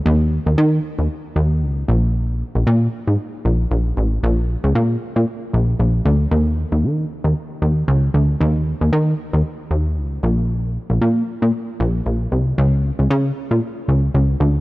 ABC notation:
X:1
M:4/4
L:1/16
Q:"Swing 16ths" 1/4=115
K:Db
V:1 name="Analog synth bass" clef=bass
E,,3 E,, E,2 z E,, z2 E,,2 D,,2 B,,,2- | B,,,3 B,,, B,,2 z A,, z2 B,,,2 B,,,2 =A,,,2 | B,,,3 D,, B,,2 z B,, z2 B,,,2 B,,,2 =D,,2 | E,,3 E,, E,2 z E,, z2 E,,2 D,,2 =D,,2 |
E,,3 E,, E,2 z E,, z2 E,,2 D,,2 B,,,2- | B,,,3 B,,, B,,2 z B,, z2 B,,,2 B,,,2 C,,2 | D,,3 D,, D,2 z B,, z2 D,,2 D,,2 =D,,2 |]